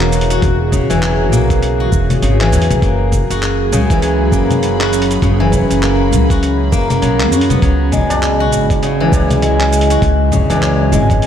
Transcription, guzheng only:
Already playing: C#3 E3 F#3 A#3 F#4
0.30 F#4
0.72 C#3
0.90 E3
1.02 F#3
1.32 A#3
1.80 F#4
2.22 C#3
2.40 E3
2.52 F#3
2.82 A#3
3.30 F#4
3.72 C#3
3.90 E3
4.02 F#3
4.32 A#3
4.80 F#4
5.22 C#3
5.40 E3
5.52 F#3
5.82 A#3
6.30 F#4
6.72 A#3
6.90 A#3
7.02 F#3
7.32 F#4
7.50 B3
7.62 F#3
7.92 G#3
8.40 F#4
8.82 C#3
9.00 E3
9.12 F#3
9.42 G#3
9.90 F#4
10.32 C#3
10.50 E3
10.62 F#3
10.92 G#3

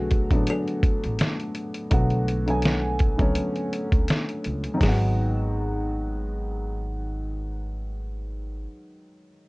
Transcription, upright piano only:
Already playing: D3 F#3 A3 B3 F#4
0.30 D3 F#3 A3 B3
0.35 D4
1.90 D3 F#3 A3 B3 F#4
2.46 D3 F#3 A3 B3 G#5
3.17 D3 F#3 A3 B3
3.21 C#4
4.74 D#3 F#3
4.81 G#3 B3
4.88 F#4

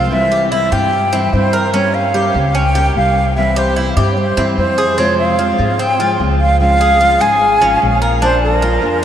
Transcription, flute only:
0.12 E5
0.52 E5
0.72 G5
1.33 C5
1.74 C#5
1.94 F5
2.55 G5
2.96 F5
3.36 E5
3.58 C5
4.12 C#5
4.17 C5
4.58 C5
4.99 C#5
5.19 F5
5.79 G5
6.41 F5
6.61 F5
7.21 G#5
8.22 C5
8.43 A#4

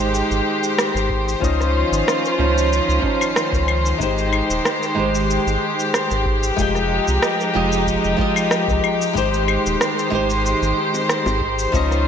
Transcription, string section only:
Already playing: D#3 G#3 G4 C5
1.41 D#3 C#4 F4
4.01 G#3 G4
6.58 F3 D#4
9.14 D#3 G#3 C5
11.75 C#4 F4

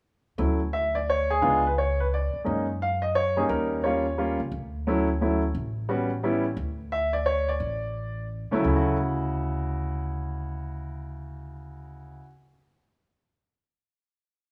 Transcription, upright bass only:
0.38 D2
1.42 C#2
2.33 muted upright bass stroke
2.46 F#2
3.49 D#2
4.40 C#2
4.52 D2
5.55 A1
6.57 D2
7.60 A1
8.52 muted upright bass stroke
8.64 D2

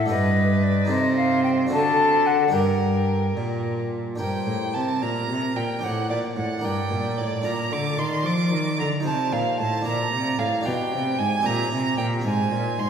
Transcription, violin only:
Already playing: A4
0.11 B4
0.91 C5
1.72 A4
2.54 A#4
4.20 G5
4.74 A5
5.03 A#5
5.56 G5
5.84 F#5
6.10 D5
6.37 F#5
6.65 G5
7.18 D5
7.45 A#5
7.73 D6
7.99 C6
8.26 D6
8.80 A#5
9.05 A5
9.33 F5
9.60 A5
9.86 A#5
10.39 F5
10.66 G5
11.19 G#5
11.46 A#5
11.98 G5
12.25 G#5
12.80 C6

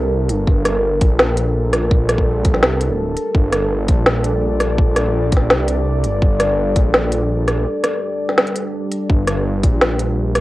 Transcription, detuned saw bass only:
Already playing: C2
0.29 G1
0.47 G1
1.01 A#1
2.45 A#1
2.63 C2
2.90 D1
3.35 G1
3.89 A#1
5.32 A#1
5.50 C2
6.04 G1
6.22 G1
6.76 A#1
9.10 G1
9.63 A#1

